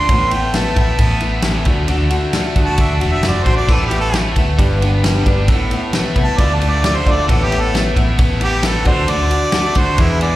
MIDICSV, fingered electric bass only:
0, 0, Header, 1, 2, 480
1, 0, Start_track
1, 0, Tempo, 450450
1, 93, Time_signature, 4, 2, 24, 8
1, 11039, End_track
2, 0, Start_track
2, 0, Title_t, "Fingered electric bass"
2, 0, Program_c, 0, 33
2, 94, Note_on_c, 0, 33, 87
2, 771, Note_off_c, 0, 33, 0
2, 811, Note_on_c, 0, 33, 97
2, 1029, Note_off_c, 0, 33, 0
2, 1050, Note_on_c, 0, 33, 111
2, 1729, Note_off_c, 0, 33, 0
2, 1765, Note_on_c, 0, 38, 82
2, 1986, Note_off_c, 0, 38, 0
2, 2007, Note_on_c, 0, 38, 98
2, 2227, Note_off_c, 0, 38, 0
2, 2727, Note_on_c, 0, 38, 85
2, 2839, Note_off_c, 0, 38, 0
2, 2966, Note_on_c, 0, 38, 106
2, 3186, Note_off_c, 0, 38, 0
2, 3212, Note_on_c, 0, 28, 83
2, 3428, Note_off_c, 0, 28, 0
2, 3455, Note_on_c, 0, 30, 77
2, 3670, Note_off_c, 0, 30, 0
2, 3684, Note_on_c, 0, 33, 83
2, 3904, Note_off_c, 0, 33, 0
2, 3927, Note_on_c, 0, 33, 88
2, 4607, Note_off_c, 0, 33, 0
2, 4643, Note_on_c, 0, 38, 94
2, 4864, Note_off_c, 0, 38, 0
2, 4890, Note_on_c, 0, 31, 126
2, 5568, Note_off_c, 0, 31, 0
2, 5609, Note_on_c, 0, 31, 88
2, 5841, Note_off_c, 0, 31, 0
2, 5841, Note_on_c, 0, 33, 85
2, 6062, Note_off_c, 0, 33, 0
2, 6562, Note_on_c, 0, 36, 92
2, 6674, Note_off_c, 0, 36, 0
2, 6804, Note_on_c, 0, 38, 109
2, 7723, Note_off_c, 0, 38, 0
2, 7766, Note_on_c, 0, 33, 101
2, 8444, Note_off_c, 0, 33, 0
2, 8484, Note_on_c, 0, 33, 109
2, 8702, Note_off_c, 0, 33, 0
2, 8726, Note_on_c, 0, 33, 121
2, 9404, Note_off_c, 0, 33, 0
2, 9437, Note_on_c, 0, 38, 85
2, 9659, Note_off_c, 0, 38, 0
2, 9692, Note_on_c, 0, 38, 100
2, 9907, Note_off_c, 0, 38, 0
2, 10399, Note_on_c, 0, 38, 92
2, 10512, Note_off_c, 0, 38, 0
2, 10641, Note_on_c, 0, 40, 112
2, 11039, Note_off_c, 0, 40, 0
2, 11039, End_track
0, 0, End_of_file